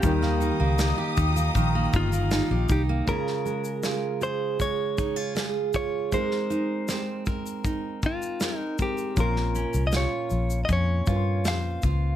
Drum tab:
SH |x-x-x-xxx-xxx-x-|x-xxx-x-x-x-x-x-|x-x-x-xxx-xxx-xx|x-xxx-xxx-x-x-x-|
SD |-o--o-------o---|-o--o-------o---|-o--o-------o---|-o--o-------o---|
BD |o-----o-o-o---o-|o-------o-o---o-|o-----o-o-o---o-|o-------o-o---o-|